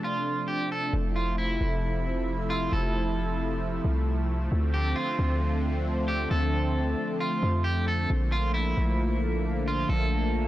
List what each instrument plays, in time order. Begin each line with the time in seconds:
Already playing: analog synth pad C3 F3 A3 D4
0.04 clean electric guitar F4
0.48 clean electric guitar G4
0.72 clean electric guitar A4
0.93 808-style bass F1, analog synth pad C3 F3 A3 E4
1.16 clean electric guitar F4
1.38 clean electric guitar E4
1.61 808-style bass F1
2.50 clean electric guitar F4
2.72 808-style bass F1, clean electric guitar A4
3.85 808-style bass C2
4.52 808-style bass D2, analog synth pad D3 F3 C4
4.74 clean electric guitar G4
4.96 clean electric guitar F4
5.19 808-style bass D2
6.08 clean electric guitar G4
6.31 808-style bass D2, clean electric guitar A4
7.20 clean electric guitar F4
7.43 808-style bass F2
7.64 clean electric guitar G4
7.88 clean electric guitar A4
8.10 808-style bass A#1, analog synth pad D3 A#3
8.32 clean electric guitar F4
8.54 clean electric guitar E4
8.77 808-style bass A#1
9.68 clean electric guitar F4
9.89 808-style bass A#1, clean electric guitar A4